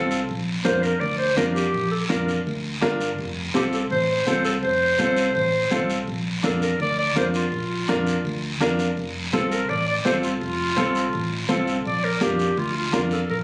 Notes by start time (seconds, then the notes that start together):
Already playing: C2 C4 F4 A4
0.11 short guiro
0.29 A#1, high conga, long guiro
0.64 F2 D4 F4 A#4 C5, high conga, short guiro
0.83 A#4, short guiro
1.00 D2 D5, high conga, long guiro
1.18 C5
1.37 F2 D4 F4 A#4, high conga, short guiro
1.54 G4, short guiro
1.74 A#1, high conga, long guiro
1.91 A4
2.09 F2 D4 F4 A#4, high conga, short guiro
2.28 short guiro
2.46 D2, high conga, long guiro
2.81 G1 D4 F4 A#4, high conga, short guiro
3.01 short guiro
3.18 F1, high conga, long guiro
3.54 C2 C4 F4 G4 A4, high conga, short guiro
3.73 A4, short guiro
3.90 A1 C5, high conga, long guiro
4.27 C2 C4 F4 A4 C5, high conga, short guiro
4.45 A4, short guiro
4.63 F1 C5, high conga, long guiro
4.98 C2 C4 F4 A4, high conga, short guiro
5.16 short guiro
5.35 A1 C5, high conga, long guiro
5.71 C2 C4 F4 A4, high conga, short guiro
5.90 short guiro
6.08 A#1, high conga, long guiro
6.43 F2 D4 F4 A4 A#4, high conga, short guiro
6.62 A#4, short guiro
6.80 D2 D5, high conga, long guiro
6.99 D5
7.16 F2 D4 F4 A#4 C5, high conga, short guiro
7.34 F4, short guiro
7.52 A#1, high conga, long guiro
7.88 F2 D4 F4 A#4, high conga, short guiro
8.07 short guiro
8.25 D2, high conga, long guiro
8.60 F2 D4 F4 A#4, high conga, short guiro
8.79 short guiro
8.97 F1, high conga, long guiro
9.33 C2 C4 F4 A4, high conga, short guiro
9.51 A#4, short guiro
9.69 A1 D5, high conga, long guiro
9.87 D5
10.05 C2 C4 F4 A4 C5, high conga, short guiro
10.23 F4, short guiro
10.41 F1, high conga, long guiro
10.77 C2 C4 F4 A4, high conga, short guiro
10.95 short guiro
11.13 A1, high conga, long guiro
11.49 C2 C4 F4 A4, high conga, short guiro
11.67 short guiro
11.85 A#1 D5, high conga, long guiro
12.04 A#4
12.21 F2 D4 F4 G4 A#4, high conga, short guiro
12.39 short guiro
12.57 D2 F4, high conga, long guiro
12.77 F4
12.93 F2 D4 F4 A#4, high conga, short guiro
13.11 A4, short guiro
13.29 A#1 A#4, high conga, long guiro